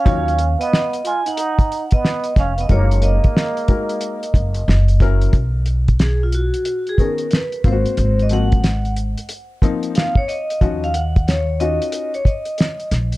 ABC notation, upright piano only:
X:1
M:4/4
L:1/8
Q:"Swing 16ths" 1/4=91
K:Ebm
V:1 name="Upright piano"
[G,EFd] z6 z | [A,EGB]3 [A,EGB] z3 [G,D_FB] | z4 z [^D,=B,^C^G] z [_B,=CF_G]- | [B,=CFG] [F,B,CG] z3 [F,B,CE] z2 |
[F,DEG] z2 [DEFG] z4 |]